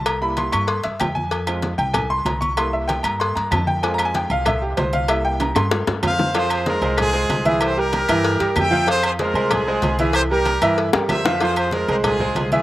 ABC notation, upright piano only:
X:1
M:4/4
L:1/8
Q:1/4=190
K:Fm
V:1 name="Upright piano"
b =b c' d' c' =e g a- | a z2 g a c' b d' | c' =e g b c' b =a g | (3a b a g f =e G c f |
=e g b c'2 z3 | [F,Ff]2 [A,Ac] [A,Ac]2 [A,Ac]2 [=E,=E=e]- | [=E,=E=e] [G,GB]2 [E,Ee]2 [G,GB]2 [F,Ff] | [F,Ff]2 [A,Ac] [A,Ac]2 [A,Ac]2 [=E,=E=e]- |
[=E,=E=e] [G,GB]2 [E,Ee]2 [G,GB]2 [F,Ff] | [F,Ff]2 [A,Ac] [A,Ac]2 [A,Ac]2 [=E,=E=e] |]
V:2 name="Upright piano"
z [G,B,=E]3 z4 | z [A,CF] z6 | [G,B,=E]8 | [A,CF]8 |
[G,B,=E]3 z4 z | z8 | z8 | z8 |
z8 | z8 |]